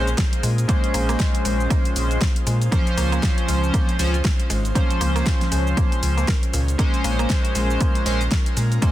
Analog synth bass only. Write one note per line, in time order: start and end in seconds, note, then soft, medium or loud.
0.00 0.15 A#1 loud
0.43 0.65 A#2 loud
0.94 1.16 A#1 loud
1.45 1.67 A#1 medium
1.96 2.18 A#1 loud
2.47 2.69 A#2 loud
2.97 3.20 C#2 loud
3.48 3.70 C#2 medium
3.99 4.21 C#2 loud
4.50 4.72 G#1 loud
5.01 5.23 C#2 loud
5.52 5.74 C#2 medium
6.02 6.25 C#2 loud
6.53 6.76 C#2 medium
7.04 7.26 A#1 loud
7.55 7.77 A#1 medium
8.06 8.28 A#1 loud
8.57 8.79 A#2 medium